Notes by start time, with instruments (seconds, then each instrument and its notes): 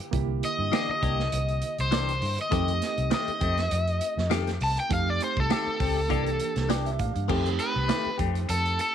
0.11 fingered electric bass C2, reed electric piano D3 A#3 E4 G4, kick, closed hi-hat
0.43 overdriven electric guitar D#5, closed hi-hat
0.59 fingered electric bass G2
0.72 clean electric guitar E3 A#3 D4 G4, overdriven electric guitar D#5, snare, closed hi-hat
0.89 overdriven electric guitar D#5, muted fingered electric bass stroke
1.01 fingered electric bass C2, clean electric guitar A#3 D4 G4, kick, closed hi-hat
1.20 snare
1.32 fingered electric bass C2, closed hi-hat
1.48 closed hi-hat
1.62 closed hi-hat
1.78 fingered electric bass C2, overdriven electric guitar C5, closed hi-hat
1.91 clean electric guitar E3 A#3 D4 G4, snare, closed hi-hat
2.09 closed hi-hat
2.22 fingered electric bass G2, open hi-hat
2.38 overdriven electric guitar D#5, closed hi-hat
2.50 fingered electric bass F2, clean electric guitar D#3 A3 C4 G4, reed electric piano A3 C4 D#4 G4, kick, closed hi-hat
2.68 closed hi-hat
2.82 snare, closed hi-hat
2.98 fingered electric bass C2, closed hi-hat
3.11 clean electric guitar D#3 A3 C4 G4, overdriven electric guitar D#5, snare, closed hi-hat
3.28 muted fingered electric bass stroke, closed hi-hat
3.41 fingered electric bass F2, clean electric guitar A3 C4 G4, kick, closed hi-hat
3.58 snare, closed hi-hat
3.71 fingered electric bass F2, closed hi-hat
3.88 closed hi-hat
4.01 closed hi-hat
4.17 fingered electric bass F2, snare
4.30 clean electric guitar D#3 A3 C4 G4, snare, closed hi-hat
4.47 snare, closed hi-hat
4.61 fingered electric bass C2, overdriven electric guitar A5, open hi-hat
4.77 overdriven electric guitar G5, closed hi-hat
4.89 fingered electric bass F2, reed electric piano A3 C4 D#4 G4, kick, closed hi-hat
4.93 overdriven electric guitar F5
5.10 overdriven electric guitar D5
5.21 overdriven electric guitar C5, closed hi-hat
5.37 fingered electric bass C2, overdriven electric guitar A4, kick
5.50 clean electric guitar D#3 A3 C4 G4, overdriven electric guitar A4, snare, closed hi-hat
5.67 muted fingered electric bass stroke
5.80 fingered electric bass C#2, clean electric guitar A3 C4 G4, kick, open hi-hat
6.09 fingered electric bass C2, clean electric guitar E3 A#3 D4 G4, reed electric piano E3 A#3 D4 G4, kick, closed hi-hat
6.26 closed hi-hat
6.40 closed hi-hat
6.56 fingered electric bass C2, snare, closed hi-hat
6.69 clean electric guitar E3 A#3 D4 G4, reed electric piano G5, snare, closed hi-hat
6.86 reed electric piano E5, closed hi-hat
6.99 fingered electric bass A2, reed electric piano F5, kick, closed hi-hat
7.16 fingered electric bass G2, closed hi-hat
7.27 fingered electric bass F2, clean electric guitar D#3 A3 C4 G4, reed electric piano A3 C4 D#4 G4, kick, crash
7.46 closed hi-hat
7.59 overdriven electric guitar B4, closed hi-hat
7.76 fingered electric bass C2
7.88 clean electric guitar D#3 A3 C4 G4, snare, closed hi-hat
8.06 muted fingered electric bass stroke
8.18 fingered electric bass F2, clean electric guitar A3 C4 G4, kick, closed hi-hat
8.35 closed hi-hat
8.49 fingered electric bass F2, overdriven electric guitar A4, closed hi-hat
8.66 closed hi-hat
8.79 overdriven electric guitar A4, closed hi-hat